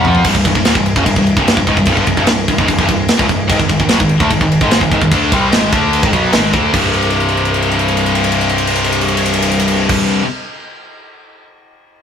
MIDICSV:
0, 0, Header, 1, 5, 480
1, 0, Start_track
1, 0, Key_signature, -3, "minor"
1, 0, Tempo, 405680
1, 297, Time_signature, 4, 2, 24, 8
1, 14223, End_track
2, 0, Start_track
2, 0, Title_t, "Lead electric guitar"
2, 0, Program_c, 0, 29
2, 0, Note_on_c, 0, 78, 112
2, 277, Note_off_c, 0, 78, 0
2, 14223, End_track
3, 0, Start_track
3, 0, Title_t, "Distorted electric guitar"
3, 0, Program_c, 1, 30
3, 89, Note_on_c, 1, 53, 95
3, 99, Note_on_c, 1, 60, 102
3, 102, Note_on_c, 1, 65, 99
3, 306, Note_off_c, 1, 53, 0
3, 311, Note_off_c, 1, 60, 0
3, 312, Note_off_c, 1, 65, 0
3, 317, Note_on_c, 1, 36, 108
3, 330, Note_on_c, 1, 43, 122
3, 420, Note_off_c, 1, 36, 0
3, 426, Note_off_c, 1, 43, 0
3, 435, Note_on_c, 1, 36, 60
3, 440, Note_on_c, 1, 43, 74
3, 546, Note_off_c, 1, 36, 0
3, 549, Note_off_c, 1, 43, 0
3, 562, Note_on_c, 1, 36, 74
3, 565, Note_on_c, 1, 43, 79
3, 660, Note_off_c, 1, 36, 0
3, 661, Note_off_c, 1, 43, 0
3, 674, Note_on_c, 1, 36, 70
3, 675, Note_on_c, 1, 43, 75
3, 766, Note_off_c, 1, 36, 0
3, 771, Note_on_c, 1, 39, 106
3, 782, Note_off_c, 1, 43, 0
3, 787, Note_on_c, 1, 46, 108
3, 887, Note_off_c, 1, 39, 0
3, 892, Note_off_c, 1, 46, 0
3, 897, Note_on_c, 1, 43, 71
3, 899, Note_on_c, 1, 36, 71
3, 1089, Note_off_c, 1, 43, 0
3, 1091, Note_off_c, 1, 36, 0
3, 1136, Note_on_c, 1, 42, 91
3, 1144, Note_on_c, 1, 49, 100
3, 1231, Note_off_c, 1, 42, 0
3, 1235, Note_on_c, 1, 36, 71
3, 1246, Note_off_c, 1, 49, 0
3, 1251, Note_on_c, 1, 43, 79
3, 1367, Note_off_c, 1, 36, 0
3, 1375, Note_off_c, 1, 43, 0
3, 1395, Note_on_c, 1, 36, 64
3, 1400, Note_on_c, 1, 43, 77
3, 1579, Note_off_c, 1, 36, 0
3, 1582, Note_off_c, 1, 43, 0
3, 1626, Note_on_c, 1, 36, 98
3, 1633, Note_on_c, 1, 43, 88
3, 1645, Note_on_c, 1, 48, 103
3, 1849, Note_off_c, 1, 43, 0
3, 1851, Note_off_c, 1, 36, 0
3, 1863, Note_on_c, 1, 43, 69
3, 1865, Note_off_c, 1, 48, 0
3, 1866, Note_on_c, 1, 36, 68
3, 1970, Note_off_c, 1, 36, 0
3, 1975, Note_on_c, 1, 37, 104
3, 1976, Note_off_c, 1, 43, 0
3, 1981, Note_on_c, 1, 44, 116
3, 2090, Note_off_c, 1, 37, 0
3, 2093, Note_off_c, 1, 44, 0
3, 2107, Note_on_c, 1, 36, 58
3, 2113, Note_on_c, 1, 43, 67
3, 2201, Note_off_c, 1, 36, 0
3, 2210, Note_off_c, 1, 43, 0
3, 2215, Note_on_c, 1, 36, 105
3, 2225, Note_on_c, 1, 43, 127
3, 2330, Note_off_c, 1, 36, 0
3, 2335, Note_off_c, 1, 43, 0
3, 2347, Note_on_c, 1, 43, 91
3, 2353, Note_on_c, 1, 50, 95
3, 2441, Note_off_c, 1, 43, 0
3, 2447, Note_on_c, 1, 36, 80
3, 2451, Note_off_c, 1, 50, 0
3, 2455, Note_on_c, 1, 43, 83
3, 2557, Note_off_c, 1, 36, 0
3, 2571, Note_on_c, 1, 36, 102
3, 2574, Note_off_c, 1, 43, 0
3, 2588, Note_on_c, 1, 43, 109
3, 2688, Note_off_c, 1, 36, 0
3, 2697, Note_off_c, 1, 43, 0
3, 2705, Note_on_c, 1, 36, 71
3, 2719, Note_on_c, 1, 43, 73
3, 2894, Note_off_c, 1, 36, 0
3, 2902, Note_off_c, 1, 43, 0
3, 2945, Note_on_c, 1, 36, 71
3, 2955, Note_on_c, 1, 43, 85
3, 3050, Note_off_c, 1, 36, 0
3, 3055, Note_on_c, 1, 37, 101
3, 3063, Note_off_c, 1, 43, 0
3, 3068, Note_on_c, 1, 44, 112
3, 3168, Note_off_c, 1, 37, 0
3, 3171, Note_off_c, 1, 44, 0
3, 3173, Note_on_c, 1, 36, 68
3, 3176, Note_on_c, 1, 43, 79
3, 3288, Note_off_c, 1, 36, 0
3, 3298, Note_off_c, 1, 43, 0
3, 3302, Note_on_c, 1, 36, 92
3, 3314, Note_on_c, 1, 43, 94
3, 3414, Note_off_c, 1, 36, 0
3, 3417, Note_off_c, 1, 43, 0
3, 3430, Note_on_c, 1, 36, 63
3, 3431, Note_on_c, 1, 43, 70
3, 3617, Note_off_c, 1, 36, 0
3, 3617, Note_off_c, 1, 43, 0
3, 3753, Note_on_c, 1, 37, 99
3, 3769, Note_on_c, 1, 44, 104
3, 3874, Note_off_c, 1, 44, 0
3, 3876, Note_off_c, 1, 37, 0
3, 3879, Note_on_c, 1, 43, 81
3, 3881, Note_on_c, 1, 36, 65
3, 4081, Note_off_c, 1, 43, 0
3, 4082, Note_off_c, 1, 36, 0
3, 4114, Note_on_c, 1, 44, 105
3, 4128, Note_on_c, 1, 51, 127
3, 4230, Note_off_c, 1, 44, 0
3, 4238, Note_off_c, 1, 51, 0
3, 4244, Note_on_c, 1, 44, 59
3, 4252, Note_on_c, 1, 51, 73
3, 4350, Note_off_c, 1, 51, 0
3, 4352, Note_off_c, 1, 44, 0
3, 4364, Note_on_c, 1, 51, 88
3, 4366, Note_on_c, 1, 44, 74
3, 4491, Note_off_c, 1, 44, 0
3, 4492, Note_off_c, 1, 51, 0
3, 4505, Note_on_c, 1, 44, 73
3, 4511, Note_on_c, 1, 51, 75
3, 4594, Note_off_c, 1, 51, 0
3, 4599, Note_on_c, 1, 47, 102
3, 4606, Note_on_c, 1, 54, 113
3, 4622, Note_off_c, 1, 44, 0
3, 4719, Note_off_c, 1, 47, 0
3, 4722, Note_on_c, 1, 44, 76
3, 4723, Note_on_c, 1, 51, 80
3, 4725, Note_off_c, 1, 54, 0
3, 4923, Note_off_c, 1, 44, 0
3, 4923, Note_off_c, 1, 51, 0
3, 4966, Note_on_c, 1, 50, 96
3, 4985, Note_on_c, 1, 57, 115
3, 5085, Note_off_c, 1, 50, 0
3, 5086, Note_on_c, 1, 44, 77
3, 5094, Note_on_c, 1, 51, 80
3, 5095, Note_off_c, 1, 57, 0
3, 5200, Note_off_c, 1, 44, 0
3, 5208, Note_off_c, 1, 51, 0
3, 5214, Note_on_c, 1, 44, 68
3, 5222, Note_on_c, 1, 51, 72
3, 5409, Note_off_c, 1, 44, 0
3, 5413, Note_off_c, 1, 51, 0
3, 5460, Note_on_c, 1, 44, 99
3, 5466, Note_on_c, 1, 51, 105
3, 5468, Note_on_c, 1, 56, 103
3, 5682, Note_off_c, 1, 51, 0
3, 5685, Note_off_c, 1, 44, 0
3, 5696, Note_on_c, 1, 51, 79
3, 5697, Note_off_c, 1, 56, 0
3, 5699, Note_on_c, 1, 44, 78
3, 5808, Note_off_c, 1, 44, 0
3, 5814, Note_off_c, 1, 51, 0
3, 5822, Note_on_c, 1, 44, 93
3, 5828, Note_on_c, 1, 51, 118
3, 5928, Note_off_c, 1, 44, 0
3, 5930, Note_off_c, 1, 51, 0
3, 5942, Note_on_c, 1, 44, 64
3, 5944, Note_on_c, 1, 51, 71
3, 6061, Note_off_c, 1, 44, 0
3, 6062, Note_off_c, 1, 51, 0
3, 6079, Note_on_c, 1, 50, 115
3, 6081, Note_on_c, 1, 57, 116
3, 6089, Note_on_c, 1, 62, 120
3, 6300, Note_off_c, 1, 50, 0
3, 6303, Note_off_c, 1, 57, 0
3, 6305, Note_on_c, 1, 48, 94
3, 6307, Note_off_c, 1, 62, 0
3, 6314, Note_on_c, 1, 55, 120
3, 6320, Note_on_c, 1, 60, 115
3, 6534, Note_off_c, 1, 48, 0
3, 6535, Note_on_c, 1, 44, 91
3, 6539, Note_off_c, 1, 55, 0
3, 6540, Note_on_c, 1, 51, 109
3, 6542, Note_off_c, 1, 60, 0
3, 6551, Note_on_c, 1, 56, 113
3, 6770, Note_off_c, 1, 44, 0
3, 6771, Note_off_c, 1, 51, 0
3, 6776, Note_on_c, 1, 50, 100
3, 6778, Note_off_c, 1, 56, 0
3, 6782, Note_on_c, 1, 57, 106
3, 6791, Note_on_c, 1, 62, 103
3, 7130, Note_off_c, 1, 50, 0
3, 7133, Note_off_c, 1, 57, 0
3, 7136, Note_on_c, 1, 44, 97
3, 7138, Note_off_c, 1, 62, 0
3, 7143, Note_on_c, 1, 51, 96
3, 7236, Note_off_c, 1, 51, 0
3, 7241, Note_on_c, 1, 47, 91
3, 7250, Note_off_c, 1, 44, 0
3, 7251, Note_on_c, 1, 54, 112
3, 7259, Note_on_c, 1, 59, 99
3, 7483, Note_off_c, 1, 47, 0
3, 7486, Note_on_c, 1, 44, 98
3, 7488, Note_off_c, 1, 54, 0
3, 7491, Note_off_c, 1, 59, 0
3, 7493, Note_on_c, 1, 51, 106
3, 7502, Note_on_c, 1, 56, 118
3, 7718, Note_off_c, 1, 51, 0
3, 7722, Note_on_c, 1, 50, 101
3, 7725, Note_off_c, 1, 44, 0
3, 7730, Note_off_c, 1, 56, 0
3, 7735, Note_on_c, 1, 57, 92
3, 7749, Note_on_c, 1, 62, 105
3, 7947, Note_on_c, 1, 36, 104
3, 7962, Note_off_c, 1, 50, 0
3, 7966, Note_on_c, 1, 43, 102
3, 7969, Note_off_c, 1, 57, 0
3, 7977, Note_off_c, 1, 62, 0
3, 7994, Note_on_c, 1, 48, 123
3, 12089, Note_off_c, 1, 36, 0
3, 12107, Note_off_c, 1, 43, 0
3, 12135, Note_off_c, 1, 48, 0
3, 14223, End_track
4, 0, Start_track
4, 0, Title_t, "Picked electric bass"
4, 0, Program_c, 2, 34
4, 50, Note_on_c, 2, 41, 104
4, 276, Note_off_c, 2, 41, 0
4, 297, Note_on_c, 2, 24, 86
4, 408, Note_off_c, 2, 24, 0
4, 423, Note_on_c, 2, 24, 83
4, 526, Note_off_c, 2, 24, 0
4, 533, Note_on_c, 2, 24, 92
4, 647, Note_off_c, 2, 24, 0
4, 654, Note_on_c, 2, 24, 78
4, 767, Note_off_c, 2, 24, 0
4, 794, Note_on_c, 2, 27, 94
4, 887, Note_off_c, 2, 27, 0
4, 894, Note_on_c, 2, 24, 86
4, 1119, Note_off_c, 2, 24, 0
4, 1142, Note_on_c, 2, 30, 97
4, 1252, Note_off_c, 2, 30, 0
4, 1258, Note_on_c, 2, 24, 88
4, 1370, Note_off_c, 2, 24, 0
4, 1380, Note_on_c, 2, 24, 82
4, 1603, Note_off_c, 2, 24, 0
4, 1622, Note_on_c, 2, 24, 97
4, 1844, Note_off_c, 2, 24, 0
4, 1859, Note_on_c, 2, 24, 87
4, 1967, Note_off_c, 2, 24, 0
4, 1974, Note_on_c, 2, 25, 100
4, 2084, Note_off_c, 2, 25, 0
4, 2092, Note_on_c, 2, 24, 86
4, 2207, Note_off_c, 2, 24, 0
4, 2221, Note_on_c, 2, 24, 89
4, 2332, Note_off_c, 2, 24, 0
4, 2338, Note_on_c, 2, 31, 90
4, 2442, Note_off_c, 2, 31, 0
4, 2450, Note_on_c, 2, 24, 81
4, 2566, Note_off_c, 2, 24, 0
4, 2572, Note_on_c, 2, 24, 97
4, 2687, Note_off_c, 2, 24, 0
4, 2721, Note_on_c, 2, 24, 76
4, 2934, Note_off_c, 2, 24, 0
4, 2941, Note_on_c, 2, 24, 88
4, 3052, Note_off_c, 2, 24, 0
4, 3057, Note_on_c, 2, 25, 107
4, 3170, Note_off_c, 2, 25, 0
4, 3180, Note_on_c, 2, 24, 86
4, 3291, Note_off_c, 2, 24, 0
4, 3299, Note_on_c, 2, 24, 96
4, 3411, Note_off_c, 2, 24, 0
4, 3419, Note_on_c, 2, 24, 78
4, 3643, Note_off_c, 2, 24, 0
4, 3777, Note_on_c, 2, 25, 102
4, 3890, Note_off_c, 2, 25, 0
4, 3899, Note_on_c, 2, 24, 81
4, 4122, Note_off_c, 2, 24, 0
4, 4136, Note_on_c, 2, 32, 80
4, 4249, Note_off_c, 2, 32, 0
4, 4259, Note_on_c, 2, 32, 78
4, 4360, Note_off_c, 2, 32, 0
4, 4367, Note_on_c, 2, 32, 80
4, 4484, Note_off_c, 2, 32, 0
4, 4501, Note_on_c, 2, 32, 79
4, 4612, Note_off_c, 2, 32, 0
4, 4638, Note_on_c, 2, 35, 87
4, 4729, Note_off_c, 2, 35, 0
4, 4737, Note_on_c, 2, 32, 83
4, 4961, Note_off_c, 2, 32, 0
4, 4980, Note_on_c, 2, 38, 108
4, 5088, Note_off_c, 2, 38, 0
4, 5095, Note_on_c, 2, 32, 87
4, 5209, Note_off_c, 2, 32, 0
4, 5226, Note_on_c, 2, 32, 86
4, 5446, Note_off_c, 2, 32, 0
4, 5461, Note_on_c, 2, 32, 104
4, 5683, Note_off_c, 2, 32, 0
4, 5703, Note_on_c, 2, 32, 87
4, 5813, Note_off_c, 2, 32, 0
4, 5818, Note_on_c, 2, 32, 100
4, 5930, Note_off_c, 2, 32, 0
4, 5938, Note_on_c, 2, 32, 80
4, 6045, Note_off_c, 2, 32, 0
4, 6052, Note_on_c, 2, 38, 93
4, 6278, Note_off_c, 2, 38, 0
4, 6304, Note_on_c, 2, 36, 108
4, 6510, Note_off_c, 2, 36, 0
4, 6517, Note_on_c, 2, 32, 84
4, 6750, Note_off_c, 2, 32, 0
4, 6773, Note_on_c, 2, 38, 111
4, 7110, Note_off_c, 2, 38, 0
4, 7134, Note_on_c, 2, 32, 93
4, 7248, Note_off_c, 2, 32, 0
4, 7260, Note_on_c, 2, 35, 96
4, 7482, Note_off_c, 2, 35, 0
4, 7498, Note_on_c, 2, 32, 99
4, 7721, Note_off_c, 2, 32, 0
4, 7736, Note_on_c, 2, 38, 91
4, 7960, Note_off_c, 2, 38, 0
4, 7979, Note_on_c, 2, 24, 92
4, 11745, Note_off_c, 2, 24, 0
4, 14223, End_track
5, 0, Start_track
5, 0, Title_t, "Drums"
5, 57, Note_on_c, 9, 43, 99
5, 173, Note_off_c, 9, 43, 0
5, 173, Note_on_c, 9, 43, 99
5, 289, Note_on_c, 9, 49, 116
5, 289, Note_on_c, 9, 57, 89
5, 292, Note_off_c, 9, 43, 0
5, 292, Note_on_c, 9, 36, 112
5, 408, Note_off_c, 9, 49, 0
5, 408, Note_off_c, 9, 57, 0
5, 411, Note_off_c, 9, 36, 0
5, 413, Note_on_c, 9, 36, 85
5, 531, Note_off_c, 9, 36, 0
5, 533, Note_on_c, 9, 36, 103
5, 535, Note_on_c, 9, 57, 70
5, 651, Note_off_c, 9, 36, 0
5, 654, Note_off_c, 9, 57, 0
5, 654, Note_on_c, 9, 36, 89
5, 766, Note_on_c, 9, 57, 85
5, 773, Note_off_c, 9, 36, 0
5, 775, Note_on_c, 9, 38, 117
5, 885, Note_off_c, 9, 57, 0
5, 890, Note_on_c, 9, 36, 103
5, 893, Note_off_c, 9, 38, 0
5, 1009, Note_off_c, 9, 36, 0
5, 1015, Note_on_c, 9, 57, 65
5, 1133, Note_off_c, 9, 57, 0
5, 1136, Note_on_c, 9, 36, 109
5, 1254, Note_off_c, 9, 36, 0
5, 1256, Note_on_c, 9, 36, 99
5, 1258, Note_on_c, 9, 57, 91
5, 1374, Note_off_c, 9, 36, 0
5, 1376, Note_off_c, 9, 57, 0
5, 1376, Note_on_c, 9, 36, 96
5, 1494, Note_off_c, 9, 36, 0
5, 1497, Note_on_c, 9, 57, 61
5, 1616, Note_off_c, 9, 57, 0
5, 1618, Note_on_c, 9, 36, 108
5, 1736, Note_off_c, 9, 36, 0
5, 1745, Note_on_c, 9, 57, 87
5, 1754, Note_on_c, 9, 38, 123
5, 1857, Note_on_c, 9, 36, 93
5, 1864, Note_off_c, 9, 57, 0
5, 1872, Note_off_c, 9, 38, 0
5, 1976, Note_off_c, 9, 36, 0
5, 1976, Note_on_c, 9, 36, 88
5, 1976, Note_on_c, 9, 57, 58
5, 2093, Note_off_c, 9, 36, 0
5, 2093, Note_on_c, 9, 36, 89
5, 2094, Note_off_c, 9, 57, 0
5, 2194, Note_on_c, 9, 57, 88
5, 2211, Note_off_c, 9, 36, 0
5, 2211, Note_on_c, 9, 36, 111
5, 2312, Note_off_c, 9, 57, 0
5, 2329, Note_off_c, 9, 36, 0
5, 2331, Note_on_c, 9, 36, 77
5, 2443, Note_on_c, 9, 57, 74
5, 2450, Note_off_c, 9, 36, 0
5, 2452, Note_on_c, 9, 36, 101
5, 2561, Note_off_c, 9, 57, 0
5, 2570, Note_off_c, 9, 36, 0
5, 2570, Note_on_c, 9, 36, 81
5, 2680, Note_on_c, 9, 57, 87
5, 2689, Note_off_c, 9, 36, 0
5, 2689, Note_on_c, 9, 38, 116
5, 2799, Note_off_c, 9, 57, 0
5, 2807, Note_off_c, 9, 38, 0
5, 2933, Note_on_c, 9, 57, 66
5, 2937, Note_on_c, 9, 36, 96
5, 3052, Note_off_c, 9, 57, 0
5, 3055, Note_off_c, 9, 36, 0
5, 3058, Note_on_c, 9, 36, 94
5, 3170, Note_on_c, 9, 57, 95
5, 3176, Note_off_c, 9, 36, 0
5, 3177, Note_on_c, 9, 36, 98
5, 3289, Note_off_c, 9, 57, 0
5, 3295, Note_off_c, 9, 36, 0
5, 3296, Note_on_c, 9, 36, 102
5, 3412, Note_on_c, 9, 57, 74
5, 3414, Note_off_c, 9, 36, 0
5, 3416, Note_on_c, 9, 36, 92
5, 3531, Note_off_c, 9, 57, 0
5, 3535, Note_off_c, 9, 36, 0
5, 3648, Note_on_c, 9, 57, 95
5, 3657, Note_on_c, 9, 38, 115
5, 3767, Note_off_c, 9, 57, 0
5, 3775, Note_off_c, 9, 38, 0
5, 3778, Note_on_c, 9, 36, 103
5, 3892, Note_on_c, 9, 57, 70
5, 3896, Note_off_c, 9, 36, 0
5, 3897, Note_on_c, 9, 36, 95
5, 4010, Note_off_c, 9, 57, 0
5, 4015, Note_off_c, 9, 36, 0
5, 4136, Note_on_c, 9, 36, 117
5, 4136, Note_on_c, 9, 57, 96
5, 4254, Note_off_c, 9, 36, 0
5, 4254, Note_off_c, 9, 57, 0
5, 4254, Note_on_c, 9, 36, 91
5, 4371, Note_on_c, 9, 57, 70
5, 4372, Note_off_c, 9, 36, 0
5, 4372, Note_on_c, 9, 36, 92
5, 4490, Note_off_c, 9, 36, 0
5, 4490, Note_off_c, 9, 57, 0
5, 4493, Note_on_c, 9, 36, 93
5, 4599, Note_on_c, 9, 57, 86
5, 4607, Note_on_c, 9, 38, 116
5, 4611, Note_off_c, 9, 36, 0
5, 4718, Note_off_c, 9, 57, 0
5, 4726, Note_off_c, 9, 38, 0
5, 4733, Note_on_c, 9, 36, 107
5, 4841, Note_on_c, 9, 57, 57
5, 4852, Note_off_c, 9, 36, 0
5, 4959, Note_off_c, 9, 57, 0
5, 4972, Note_on_c, 9, 36, 124
5, 5090, Note_off_c, 9, 36, 0
5, 5092, Note_on_c, 9, 57, 85
5, 5094, Note_on_c, 9, 36, 85
5, 5211, Note_off_c, 9, 57, 0
5, 5213, Note_off_c, 9, 36, 0
5, 5218, Note_on_c, 9, 36, 103
5, 5336, Note_off_c, 9, 36, 0
5, 5343, Note_on_c, 9, 57, 68
5, 5455, Note_on_c, 9, 36, 107
5, 5461, Note_off_c, 9, 57, 0
5, 5574, Note_off_c, 9, 36, 0
5, 5574, Note_on_c, 9, 57, 86
5, 5582, Note_on_c, 9, 38, 116
5, 5692, Note_off_c, 9, 57, 0
5, 5695, Note_on_c, 9, 36, 85
5, 5701, Note_off_c, 9, 38, 0
5, 5813, Note_off_c, 9, 36, 0
5, 5816, Note_on_c, 9, 36, 90
5, 5821, Note_on_c, 9, 57, 57
5, 5934, Note_off_c, 9, 36, 0
5, 5935, Note_on_c, 9, 36, 89
5, 5939, Note_off_c, 9, 57, 0
5, 6052, Note_on_c, 9, 57, 85
5, 6053, Note_off_c, 9, 36, 0
5, 6053, Note_on_c, 9, 36, 111
5, 6170, Note_off_c, 9, 57, 0
5, 6171, Note_off_c, 9, 36, 0
5, 6293, Note_on_c, 9, 57, 71
5, 6295, Note_on_c, 9, 36, 127
5, 6411, Note_off_c, 9, 57, 0
5, 6414, Note_off_c, 9, 36, 0
5, 6534, Note_on_c, 9, 57, 84
5, 6543, Note_on_c, 9, 38, 118
5, 6653, Note_off_c, 9, 57, 0
5, 6661, Note_off_c, 9, 38, 0
5, 6774, Note_on_c, 9, 57, 68
5, 6775, Note_on_c, 9, 36, 115
5, 6893, Note_off_c, 9, 57, 0
5, 6894, Note_off_c, 9, 36, 0
5, 7017, Note_on_c, 9, 57, 89
5, 7135, Note_off_c, 9, 57, 0
5, 7136, Note_on_c, 9, 36, 127
5, 7254, Note_off_c, 9, 36, 0
5, 7254, Note_on_c, 9, 36, 93
5, 7258, Note_on_c, 9, 57, 73
5, 7373, Note_off_c, 9, 36, 0
5, 7376, Note_off_c, 9, 57, 0
5, 7486, Note_on_c, 9, 57, 104
5, 7495, Note_on_c, 9, 38, 126
5, 7605, Note_off_c, 9, 57, 0
5, 7613, Note_off_c, 9, 38, 0
5, 7728, Note_on_c, 9, 57, 72
5, 7733, Note_on_c, 9, 36, 106
5, 7847, Note_off_c, 9, 57, 0
5, 7852, Note_off_c, 9, 36, 0
5, 7969, Note_on_c, 9, 49, 105
5, 7973, Note_on_c, 9, 36, 103
5, 8088, Note_off_c, 9, 49, 0
5, 8091, Note_off_c, 9, 36, 0
5, 8207, Note_on_c, 9, 57, 53
5, 8310, Note_on_c, 9, 51, 54
5, 8325, Note_off_c, 9, 57, 0
5, 8403, Note_on_c, 9, 57, 53
5, 8428, Note_off_c, 9, 51, 0
5, 8522, Note_off_c, 9, 57, 0
5, 8522, Note_on_c, 9, 51, 54
5, 8620, Note_on_c, 9, 57, 52
5, 8640, Note_off_c, 9, 51, 0
5, 8721, Note_on_c, 9, 51, 50
5, 8738, Note_off_c, 9, 57, 0
5, 8817, Note_on_c, 9, 57, 60
5, 8840, Note_off_c, 9, 51, 0
5, 8921, Note_on_c, 9, 51, 63
5, 8935, Note_off_c, 9, 57, 0
5, 9020, Note_on_c, 9, 57, 62
5, 9039, Note_off_c, 9, 51, 0
5, 9127, Note_on_c, 9, 51, 71
5, 9138, Note_off_c, 9, 57, 0
5, 9217, Note_on_c, 9, 57, 60
5, 9246, Note_off_c, 9, 51, 0
5, 9325, Note_on_c, 9, 51, 63
5, 9335, Note_off_c, 9, 57, 0
5, 9428, Note_on_c, 9, 57, 72
5, 9444, Note_off_c, 9, 51, 0
5, 9537, Note_on_c, 9, 51, 67
5, 9546, Note_off_c, 9, 57, 0
5, 9643, Note_on_c, 9, 57, 76
5, 9655, Note_off_c, 9, 51, 0
5, 9748, Note_on_c, 9, 51, 73
5, 9762, Note_off_c, 9, 57, 0
5, 9840, Note_on_c, 9, 57, 78
5, 9867, Note_off_c, 9, 51, 0
5, 9949, Note_on_c, 9, 51, 74
5, 9958, Note_off_c, 9, 57, 0
5, 10048, Note_on_c, 9, 57, 70
5, 10067, Note_off_c, 9, 51, 0
5, 10151, Note_on_c, 9, 51, 77
5, 10167, Note_off_c, 9, 57, 0
5, 10260, Note_on_c, 9, 57, 90
5, 10269, Note_off_c, 9, 51, 0
5, 10359, Note_on_c, 9, 51, 78
5, 10378, Note_off_c, 9, 57, 0
5, 10462, Note_on_c, 9, 57, 74
5, 10477, Note_off_c, 9, 51, 0
5, 10559, Note_on_c, 9, 51, 86
5, 10581, Note_off_c, 9, 57, 0
5, 10663, Note_on_c, 9, 57, 73
5, 10677, Note_off_c, 9, 51, 0
5, 10746, Note_on_c, 9, 51, 74
5, 10781, Note_off_c, 9, 57, 0
5, 10849, Note_on_c, 9, 57, 90
5, 10864, Note_off_c, 9, 51, 0
5, 10951, Note_on_c, 9, 51, 93
5, 10967, Note_off_c, 9, 57, 0
5, 11045, Note_on_c, 9, 57, 92
5, 11069, Note_off_c, 9, 51, 0
5, 11150, Note_on_c, 9, 51, 97
5, 11163, Note_off_c, 9, 57, 0
5, 11256, Note_on_c, 9, 57, 83
5, 11268, Note_off_c, 9, 51, 0
5, 11352, Note_on_c, 9, 51, 93
5, 11375, Note_off_c, 9, 57, 0
5, 11449, Note_on_c, 9, 57, 96
5, 11470, Note_off_c, 9, 51, 0
5, 11568, Note_off_c, 9, 57, 0
5, 11707, Note_on_c, 9, 36, 120
5, 11710, Note_on_c, 9, 49, 118
5, 11825, Note_off_c, 9, 36, 0
5, 11829, Note_off_c, 9, 49, 0
5, 14223, End_track
0, 0, End_of_file